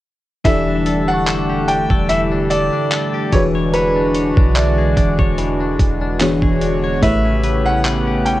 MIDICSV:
0, 0, Header, 1, 8, 480
1, 0, Start_track
1, 0, Tempo, 821918
1, 263, Time_signature, 4, 2, 24, 8
1, 4906, End_track
2, 0, Start_track
2, 0, Title_t, "Celesta"
2, 0, Program_c, 0, 8
2, 502, Note_on_c, 0, 81, 60
2, 662, Note_on_c, 0, 85, 60
2, 802, Note_on_c, 0, 86, 55
2, 1817, Note_off_c, 0, 81, 0
2, 1944, Note_off_c, 0, 85, 0
2, 2088, Note_off_c, 0, 86, 0
2, 2662, Note_on_c, 0, 76, 85
2, 3839, Note_off_c, 0, 76, 0
2, 4906, End_track
3, 0, Start_track
3, 0, Title_t, "Grand piano"
3, 0, Program_c, 1, 0
3, 261, Note_on_c, 1, 76, 100
3, 631, Note_on_c, 1, 78, 104
3, 643, Note_off_c, 1, 76, 0
3, 981, Note_on_c, 1, 79, 106
3, 993, Note_off_c, 1, 78, 0
3, 1221, Note_on_c, 1, 76, 106
3, 1229, Note_off_c, 1, 79, 0
3, 1275, Note_off_c, 1, 76, 0
3, 1462, Note_on_c, 1, 74, 117
3, 1943, Note_on_c, 1, 73, 86
3, 1957, Note_off_c, 1, 74, 0
3, 1997, Note_off_c, 1, 73, 0
3, 2182, Note_on_c, 1, 71, 90
3, 2661, Note_on_c, 1, 74, 81
3, 2677, Note_off_c, 1, 71, 0
3, 3598, Note_off_c, 1, 74, 0
3, 4103, Note_on_c, 1, 76, 102
3, 4471, Note_on_c, 1, 78, 99
3, 4484, Note_off_c, 1, 76, 0
3, 4822, Note_on_c, 1, 79, 107
3, 4833, Note_off_c, 1, 78, 0
3, 4906, Note_off_c, 1, 79, 0
3, 4906, End_track
4, 0, Start_track
4, 0, Title_t, "FM electric piano"
4, 0, Program_c, 2, 5
4, 258, Note_on_c, 2, 52, 67
4, 261, Note_on_c, 2, 64, 64
4, 265, Note_on_c, 2, 62, 66
4, 269, Note_on_c, 2, 67, 66
4, 272, Note_on_c, 2, 69, 64
4, 276, Note_on_c, 2, 74, 79
4, 365, Control_c, 2, 64, 127
4, 1917, Note_off_c, 2, 52, 0
4, 1919, Note_off_c, 2, 64, 0
4, 1920, Note_off_c, 2, 62, 0
4, 1923, Note_off_c, 2, 67, 0
4, 1924, Note_off_c, 2, 69, 0
4, 1926, Note_off_c, 2, 74, 0
4, 1937, Note_on_c, 2, 52, 69
4, 1941, Note_on_c, 2, 62, 62
4, 1946, Note_on_c, 2, 66, 63
4, 1950, Control_c, 2, 64, 0
4, 1951, Note_on_c, 2, 68, 67
4, 1955, Note_on_c, 2, 71, 77
4, 2049, Control_c, 2, 64, 127
4, 3597, Note_off_c, 2, 52, 0
4, 3599, Note_off_c, 2, 62, 0
4, 3601, Note_off_c, 2, 66, 0
4, 3604, Note_off_c, 2, 68, 0
4, 3606, Note_off_c, 2, 71, 0
4, 3622, Note_on_c, 2, 52, 79
4, 3624, Note_on_c, 2, 59, 74
4, 3625, Note_on_c, 2, 62, 76
4, 3627, Note_on_c, 2, 66, 71
4, 3629, Note_on_c, 2, 68, 72
4, 3630, Control_c, 2, 64, 0
4, 3631, Note_on_c, 2, 73, 86
4, 3728, Control_c, 2, 64, 127
4, 4096, Note_on_c, 2, 57, 72
4, 4101, Note_on_c, 2, 64, 67
4, 4103, Note_off_c, 2, 52, 0
4, 4103, Note_off_c, 2, 59, 0
4, 4104, Note_off_c, 2, 62, 0
4, 4105, Note_off_c, 2, 66, 0
4, 4106, Note_off_c, 2, 68, 0
4, 4106, Note_on_c, 2, 67, 67
4, 4107, Note_off_c, 2, 73, 0
4, 4111, Note_on_c, 2, 71, 64
4, 4112, Control_c, 2, 64, 0
4, 4115, Note_on_c, 2, 73, 81
4, 4228, Control_c, 2, 64, 127
4, 4906, Note_off_c, 2, 57, 0
4, 4906, Note_off_c, 2, 64, 0
4, 4906, Note_off_c, 2, 67, 0
4, 4906, Note_off_c, 2, 71, 0
4, 4906, Note_off_c, 2, 73, 0
4, 4906, End_track
5, 0, Start_track
5, 0, Title_t, "Clean electric guitar"
5, 0, Program_c, 3, 27
5, 264, Note_on_c, 3, 52, 94
5, 268, Note_on_c, 3, 69, 76
5, 394, Note_on_c, 3, 62, 62
5, 497, Note_off_c, 3, 69, 0
5, 504, Note_on_c, 3, 69, 70
5, 631, Note_off_c, 3, 62, 0
5, 634, Note_on_c, 3, 62, 61
5, 737, Note_off_c, 3, 69, 0
5, 744, Note_on_c, 3, 69, 71
5, 873, Note_on_c, 3, 67, 59
5, 981, Note_off_c, 3, 62, 0
5, 983, Note_on_c, 3, 62, 62
5, 1106, Note_off_c, 3, 69, 0
5, 1113, Note_on_c, 3, 69, 72
5, 1220, Note_off_c, 3, 69, 0
5, 1221, Note_off_c, 3, 52, 0
5, 1224, Note_on_c, 3, 52, 86
5, 1227, Note_on_c, 3, 69, 73
5, 1351, Note_off_c, 3, 62, 0
5, 1353, Note_on_c, 3, 62, 65
5, 1457, Note_off_c, 3, 69, 0
5, 1464, Note_on_c, 3, 69, 72
5, 1591, Note_off_c, 3, 62, 0
5, 1594, Note_on_c, 3, 62, 64
5, 1697, Note_off_c, 3, 69, 0
5, 1704, Note_on_c, 3, 69, 70
5, 1827, Note_off_c, 3, 67, 0
5, 1834, Note_on_c, 3, 67, 63
5, 1942, Note_off_c, 3, 52, 0
5, 1944, Note_on_c, 3, 52, 81
5, 1995, Note_off_c, 3, 67, 0
5, 1995, Note_off_c, 3, 69, 0
5, 2074, Note_on_c, 3, 73, 65
5, 2091, Note_off_c, 3, 62, 0
5, 2182, Note_off_c, 3, 52, 0
5, 2184, Note_on_c, 3, 52, 87
5, 2186, Note_off_c, 3, 73, 0
5, 2188, Note_on_c, 3, 73, 76
5, 2314, Note_on_c, 3, 62, 61
5, 2422, Note_off_c, 3, 73, 0
5, 2424, Note_on_c, 3, 73, 67
5, 2551, Note_off_c, 3, 62, 0
5, 2553, Note_on_c, 3, 62, 60
5, 2793, Note_on_c, 3, 68, 56
5, 2901, Note_off_c, 3, 62, 0
5, 2903, Note_on_c, 3, 62, 65
5, 2921, Note_off_c, 3, 73, 0
5, 3032, Note_on_c, 3, 73, 66
5, 3141, Note_off_c, 3, 52, 0
5, 3144, Note_on_c, 3, 52, 89
5, 3266, Note_off_c, 3, 62, 0
5, 3273, Note_on_c, 3, 62, 63
5, 3290, Note_off_c, 3, 73, 0
5, 3506, Note_off_c, 3, 62, 0
5, 3513, Note_on_c, 3, 62, 63
5, 3621, Note_off_c, 3, 52, 0
5, 3623, Note_on_c, 3, 52, 89
5, 3675, Note_off_c, 3, 62, 0
5, 3675, Note_off_c, 3, 68, 0
5, 3753, Note_on_c, 3, 68, 65
5, 3863, Note_on_c, 3, 62, 65
5, 3993, Note_on_c, 3, 73, 70
5, 4103, Note_on_c, 3, 57, 91
5, 4104, Note_off_c, 3, 73, 0
5, 4107, Note_on_c, 3, 71, 76
5, 4155, Note_off_c, 3, 62, 0
5, 4155, Note_off_c, 3, 68, 0
5, 4233, Note_on_c, 3, 61, 63
5, 4337, Note_off_c, 3, 71, 0
5, 4344, Note_on_c, 3, 71, 67
5, 4471, Note_off_c, 3, 61, 0
5, 4473, Note_on_c, 3, 61, 61
5, 4577, Note_off_c, 3, 71, 0
5, 4584, Note_on_c, 3, 71, 70
5, 4714, Note_on_c, 3, 67, 61
5, 4822, Note_off_c, 3, 61, 0
5, 4824, Note_on_c, 3, 61, 61
5, 4906, Note_off_c, 3, 52, 0
5, 4906, Note_off_c, 3, 57, 0
5, 4906, Note_off_c, 3, 61, 0
5, 4906, Note_off_c, 3, 67, 0
5, 4906, Note_off_c, 3, 71, 0
5, 4906, End_track
6, 0, Start_track
6, 0, Title_t, "Analog synth pad"
6, 0, Program_c, 4, 89
6, 262, Note_on_c, 4, 55, 72
6, 262, Note_on_c, 4, 57, 74
6, 263, Note_on_c, 4, 50, 80
6, 263, Note_on_c, 4, 67, 86
6, 1926, Note_off_c, 4, 55, 0
6, 1926, Note_off_c, 4, 57, 0
6, 1926, Note_off_c, 4, 67, 0
6, 1942, Note_on_c, 4, 62, 71
6, 1942, Note_on_c, 4, 66, 89
6, 1943, Note_on_c, 4, 56, 73
6, 3600, Note_off_c, 4, 50, 0
6, 3606, Note_off_c, 4, 62, 0
6, 3606, Note_off_c, 4, 66, 0
6, 3623, Note_on_c, 4, 50, 80
6, 3624, Note_on_c, 4, 73, 69
6, 3625, Note_on_c, 4, 66, 85
6, 4081, Note_off_c, 4, 56, 0
6, 4098, Note_off_c, 4, 50, 0
6, 4099, Note_off_c, 4, 66, 0
6, 4099, Note_off_c, 4, 73, 0
6, 4103, Note_on_c, 4, 49, 75
6, 4103, Note_on_c, 4, 59, 70
6, 4104, Note_on_c, 4, 57, 73
6, 4104, Note_on_c, 4, 67, 86
6, 4906, Note_off_c, 4, 49, 0
6, 4906, Note_off_c, 4, 57, 0
6, 4906, Note_off_c, 4, 59, 0
6, 4906, Note_off_c, 4, 67, 0
6, 4906, End_track
7, 0, Start_track
7, 0, Title_t, "808-style bass"
7, 0, Program_c, 5, 38
7, 265, Note_on_c, 5, 28, 115
7, 1090, Note_off_c, 5, 28, 0
7, 1112, Note_on_c, 5, 28, 105
7, 1573, Note_off_c, 5, 28, 0
7, 1944, Note_on_c, 5, 28, 106
7, 2530, Note_off_c, 5, 28, 0
7, 2554, Note_on_c, 5, 35, 100
7, 2890, Note_off_c, 5, 35, 0
7, 2904, Note_on_c, 5, 28, 101
7, 3028, Note_off_c, 5, 28, 0
7, 3032, Note_on_c, 5, 28, 110
7, 3368, Note_off_c, 5, 28, 0
7, 3386, Note_on_c, 5, 28, 108
7, 3739, Note_off_c, 5, 28, 0
7, 3751, Note_on_c, 5, 28, 103
7, 4088, Note_off_c, 5, 28, 0
7, 4105, Note_on_c, 5, 33, 119
7, 4906, Note_off_c, 5, 33, 0
7, 4906, End_track
8, 0, Start_track
8, 0, Title_t, "Drums"
8, 263, Note_on_c, 9, 36, 118
8, 263, Note_on_c, 9, 42, 76
8, 321, Note_off_c, 9, 36, 0
8, 321, Note_off_c, 9, 42, 0
8, 502, Note_on_c, 9, 42, 71
8, 560, Note_off_c, 9, 42, 0
8, 740, Note_on_c, 9, 42, 65
8, 743, Note_on_c, 9, 39, 121
8, 799, Note_off_c, 9, 42, 0
8, 801, Note_off_c, 9, 39, 0
8, 983, Note_on_c, 9, 42, 64
8, 1042, Note_off_c, 9, 42, 0
8, 1110, Note_on_c, 9, 36, 90
8, 1169, Note_off_c, 9, 36, 0
8, 1222, Note_on_c, 9, 42, 76
8, 1281, Note_off_c, 9, 42, 0
8, 1465, Note_on_c, 9, 42, 74
8, 1523, Note_off_c, 9, 42, 0
8, 1702, Note_on_c, 9, 42, 84
8, 1703, Note_on_c, 9, 39, 104
8, 1760, Note_off_c, 9, 42, 0
8, 1761, Note_off_c, 9, 39, 0
8, 1942, Note_on_c, 9, 42, 67
8, 1943, Note_on_c, 9, 36, 109
8, 2000, Note_off_c, 9, 42, 0
8, 2001, Note_off_c, 9, 36, 0
8, 2182, Note_on_c, 9, 42, 78
8, 2241, Note_off_c, 9, 42, 0
8, 2421, Note_on_c, 9, 42, 68
8, 2479, Note_off_c, 9, 42, 0
8, 2553, Note_on_c, 9, 36, 93
8, 2611, Note_off_c, 9, 36, 0
8, 2660, Note_on_c, 9, 42, 68
8, 2662, Note_on_c, 9, 39, 124
8, 2718, Note_off_c, 9, 42, 0
8, 2720, Note_off_c, 9, 39, 0
8, 2902, Note_on_c, 9, 36, 90
8, 2903, Note_on_c, 9, 42, 62
8, 2960, Note_off_c, 9, 36, 0
8, 2961, Note_off_c, 9, 42, 0
8, 3030, Note_on_c, 9, 36, 93
8, 3088, Note_off_c, 9, 36, 0
8, 3142, Note_on_c, 9, 42, 74
8, 3200, Note_off_c, 9, 42, 0
8, 3384, Note_on_c, 9, 36, 104
8, 3384, Note_on_c, 9, 42, 67
8, 3442, Note_off_c, 9, 36, 0
8, 3443, Note_off_c, 9, 42, 0
8, 3621, Note_on_c, 9, 42, 82
8, 3622, Note_on_c, 9, 39, 97
8, 3680, Note_off_c, 9, 42, 0
8, 3681, Note_off_c, 9, 39, 0
8, 3750, Note_on_c, 9, 36, 89
8, 3808, Note_off_c, 9, 36, 0
8, 3862, Note_on_c, 9, 42, 72
8, 3920, Note_off_c, 9, 42, 0
8, 4103, Note_on_c, 9, 36, 116
8, 4103, Note_on_c, 9, 42, 75
8, 4161, Note_off_c, 9, 36, 0
8, 4161, Note_off_c, 9, 42, 0
8, 4342, Note_on_c, 9, 42, 69
8, 4400, Note_off_c, 9, 42, 0
8, 4581, Note_on_c, 9, 42, 66
8, 4583, Note_on_c, 9, 39, 119
8, 4639, Note_off_c, 9, 42, 0
8, 4642, Note_off_c, 9, 39, 0
8, 4824, Note_on_c, 9, 42, 67
8, 4882, Note_off_c, 9, 42, 0
8, 4906, End_track
0, 0, End_of_file